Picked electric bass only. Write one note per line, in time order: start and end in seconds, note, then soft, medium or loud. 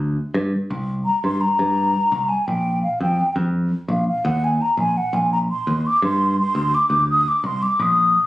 0.00 0.16 D2 medium
0.34 0.52 G2 medium
0.70 1.04 C2 medium
1.24 1.41 G2 medium
1.59 1.93 G2 medium
2.12 2.29 C2 medium
2.48 2.81 A#1 medium
3.00 3.18 F2 medium
3.36 3.70 F2 medium
3.88 4.06 A#1 medium
4.25 4.59 D#2 medium
4.77 4.95 A#1 medium
5.13 5.47 A#1 medium
5.67 5.84 D#2 medium
6.02 6.36 G2 medium
6.55 6.72 D2 medium
6.90 7.24 D2 medium
7.44 7.61 C2 medium
7.80 8.13 A#1 medium